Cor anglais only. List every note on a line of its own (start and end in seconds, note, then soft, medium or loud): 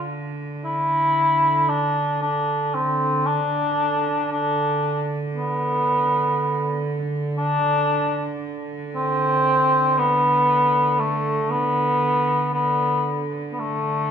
0.65 1.70 E4 loud
1.69 2.21 D4 medium
2.22 2.76 D4 medium
2.74 3.28 C4 medium
3.26 4.32 D4 medium
4.32 5.06 D4 medium
5.35 6.84 B3 medium
7.38 8.37 D4 loud
8.96 10.00 C4 loud
9.98 11.01 B3 medium
10.99 11.52 A3 medium
11.50 12.53 B3 medium
12.54 13.29 B3 medium
13.52 13.61 B3 soft
13.59 14.11 A3 medium